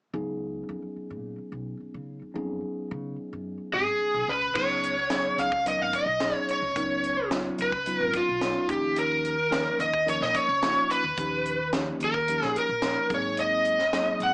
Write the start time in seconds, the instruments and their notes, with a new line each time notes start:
0.14 upright bass C#2, tine electric piano F#3 B3 C#4 D#4 G#4
0.69 upright bass F2
0.96 muted upright bass stroke
1.10 upright bass A#2
1.38 muted upright bass stroke
1.52 upright bass B1
1.80 muted upright bass stroke
1.94 upright bass C#3
2.22 muted upright bass stroke
2.34 upright bass F2, tine electric piano F#3 B3 C#4 D#4 G#4
2.91 upright bass C#3
3.33 upright bass F#2
3.73 upright bass G#1, lead electric guitar G#4
4.02 muted upright bass stroke
4.14 upright bass B1
4.28 upright bass C#2, lead electric guitar B4
4.55 upright bass C#2, tine electric piano F#3 B3 C#4 D#4 G#4, lead electric guitar C#5, kick, crash
4.83 closed hi-hat
5.10 tine electric piano F#3 B3 C#4 D#4 G#4, snare, closed hi-hat
5.38 upright bass C#2, lead electric guitar F5, closed hi-hat
5.52 kick
5.65 tine electric piano F#3 B3 C#4 D#4 A#4, lead electric guitar D#5, closed hi-hat
5.79 upright bass G#1, lead electric guitar F5
5.93 lead electric guitar D#5, muted upright bass stroke, kick, closed hi-hat
6.06 upright bass B1
6.20 tine electric piano F#3 B3 C#4 D#4 G#4, snare, closed hi-hat
6.48 lead electric guitar C#5, closed hi-hat
6.62 upright bass C#2
6.76 upright bass C#2, tine electric piano F#3 B3 C#4 D#4 A#4, kick, closed hi-hat
7.04 closed hi-hat
7.30 tine electric piano F#3 B3 C#4 D#4 F4, snare, closed hi-hat
7.58 upright bass C#2, lead electric guitar B4, closed hi-hat
7.72 kick
7.86 tine electric piano F#3 B3 C#4 D#4 F4, closed hi-hat
8.01 upright bass G#1, lead electric guitar A#4
8.13 lead electric guitar F4, muted upright bass stroke, kick, closed hi-hat
8.28 upright bass B1
8.40 tine electric piano F#3 B3 C#4 D#4 A#4, snare, closed hi-hat
8.68 upright bass D#2, tine electric piano F3 A#3 C#4 D#4 G4, lead electric guitar G4, kick, closed hi-hat
8.96 lead electric guitar A#4, closed hi-hat
9.25 closed hi-hat
9.50 tine electric piano F3 A#3 C#4 D#4 A#4, snare, closed hi-hat
9.79 upright bass D#2, lead electric guitar D#5, closed hi-hat
9.94 kick
10.06 tine electric piano F3 A#3 C#4 D#4 A#4, lead electric guitar C#5, closed hi-hat
10.21 upright bass A#1, lead electric guitar D#5, snare
10.34 lead electric guitar C#5, muted upright bass stroke, kick, closed hi-hat
10.48 upright bass C#2
10.62 tine electric piano F3 A#3 C#4 D#4 F4, snare, closed hi-hat
10.91 lead electric guitar B4, closed hi-hat
11.04 upright bass D#2
11.17 upright bass D#2, tine electric piano A#2 F3 C#4 D#4 G4, kick, closed hi-hat
11.46 closed hi-hat
11.73 tine electric piano F3 A#3 C#4 D#4 G4, snare, closed hi-hat
12.00 upright bass D#2, closed hi-hat
12.04 lead electric guitar A#4
12.14 kick
12.28 tine electric piano F3 A#3 C#4 D#4 G4, closed hi-hat
12.42 upright bass A#1, snare
12.47 lead electric guitar G#4
12.55 lead electric guitar A#4, muted upright bass stroke, closed hi-hat
12.69 upright bass A#1
12.82 tine electric piano F3 A#3 C#4 D#4 A#4, snare, closed hi-hat
13.10 upright bass G#1, tine electric piano F#3 A#3 C4 D#4 G#4, kick, closed hi-hat
13.14 lead electric guitar C#5
13.37 lead electric guitar D#5, closed hi-hat
13.65 closed hi-hat
13.79 snare
13.93 tine electric piano F#3 A#3 C4 D#4 G#4, snare, closed hi-hat
14.20 upright bass G#1, lead electric guitar F#5, closed hi-hat